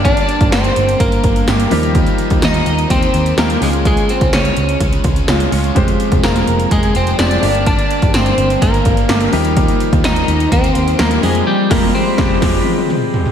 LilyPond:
<<
  \new Staff \with { instrumentName = "Violin section" } { \time 4/4 \key f \minor \tempo 4 = 126 d''4 c''4 bes'4. r8 | r4 ees''4 c''4 bes'8 aes'8 | aes'8 c''8 des''4 r2 | r4 bes'4 aes'8 c''8 d''4 |
d''4 c''4 bes'4. r8 | r4 ees''4 c''4 bes'8 aes'8 | r1 | }
  \new Staff \with { instrumentName = "Clean electric guitar" } { \time 4/4 \key f \minor d'4 c'4 bes4. r8 | r4 ees'4 c'4 bes8 aes8 | aes8 c'8 des'4 r2 | r4 bes4 aes8 c'8 d'4 |
d'4 c'4 bes4. r8 | r4 ees'4 c'4 bes8 aes8 | g8 bes8 c'4 r2 | }
  \new Staff \with { instrumentName = "Grand piano" } { \time 4/4 \key f \minor <bes d' g'>4 r2 <bes d' g'>8 <f g bes ees' g'>8~ | <f g bes ees' g'>4 r2 <f g bes ees' g'>8 <aes des' f'>8~ | <aes des' f'>4 r2 <aes des' f'>8 <aes des' f'>8 | <aes c' f' g' c''>4. r4. <aes c' f' g' c''>8 <bes d' g'>8~ |
<bes d' g'>4 r2 <bes d' g'>8 <f g bes ees' g'>8~ | <f g bes ees' g'>4 r2 <f g bes ees' bes'>8 <f g aes c' g'>8 | r8 <f g aes c' g'>8 r8 <f g aes c' g'>8 <f g aes c' g'>8 r4. | }
  \new Staff \with { instrumentName = "Distorted electric guitar" } { \clef bass \time 4/4 \key f \minor <g, d g>2 <g, d g>4. <bes ees'>8 | <ees bes ees'>2 <ees bes ees'>4. <aes des'>8 | <des aes des'>2 <des aes des'>4. <aes des'>8 | <f, c f>2 <f, c f>4. <d g>8 |
<g, d g>2 <g, d g>4. <bes ees'>8 | <ees bes ees'>2 <ees bes ees'>4. <c f>8 | r8 <f, c f>8 r8 <f, c f>8 <f, c f>8 r4. | }
  \new Staff \with { instrumentName = "Picked electric bass" } { \clef bass \time 4/4 \key f \minor g,,8 r16 g,,16 g,,8 g,,8 g,,8 g,,8 g,,8 ees,8~ | ees,8 r16 ees,16 ees,8 ees,8 ees,8 ees,8 ees,8 des,8~ | des,8 r16 des,16 des,8 des,8 des,8 des,8 des,8 des,8 | f,,8 r16 f,,16 f,,8 f,,8 f,,8 f,,8 f,,8 g,,8~ |
g,,8 r16 g,,16 g,,8 g,,8 g,,8 g,,8 g,,8 ees,8~ | ees,8 r16 ees,16 ees,8 ees,8 ees,8 ees,8 ees,8 f,8 | r8 f,,8 r8 f,,8 f,,8 r4. | }
  \new DrumStaff \with { instrumentName = "Drums" } \drummode { \time 4/4 <hh bd>16 hh16 hh16 <hh bd>16 <hh sn tamb>16 hh16 hh16 hh16 <hh bd>16 hh16 <hh bd>16 hh16 <hh sn tamb>16 hh16 hho16 hh16 | <hh bd>16 hh16 hh16 <hh bd>16 <hh sn tamb>16 hh16 hh16 hh16 <hh bd>16 hh16 hh16 hh16 <hh sn tamb>16 hh16 hho16 hh16 | <hh bd>16 hh16 hh16 <hh bd>16 <hh sn tamb>16 hh16 hh16 hh16 <hh bd>16 hh16 <hh bd>16 hh16 <hh sn tamb>16 hh16 hho16 hh16 | <hh bd>16 hh16 hh16 <hh bd>16 <hh sn tamb>16 hh16 hh16 hh16 <hh bd>16 hh16 hh16 hh16 <hh sn tamb>16 hh16 hho16 hh16 |
<hh bd>16 hh16 hh16 <hh bd>16 <hh sn tamb>16 hh16 hh16 hh16 <hh bd>16 hh16 <hh bd>16 hh16 <hh sn tamb>16 hh16 hho16 hh16 | <hh bd>16 hh16 hh16 <hh bd>16 <hh sn tamb>16 hh16 hh16 hh16 <hh bd>16 hh16 hh16 hh16 <hh sn tamb>16 hh16 hho16 hh16 | r8 <cymc bd sn>8 r8 <bd sn>8 <cymc bd sn>8 tommh16 tommh16 toml8 tomfh16 tomfh16 | }
>>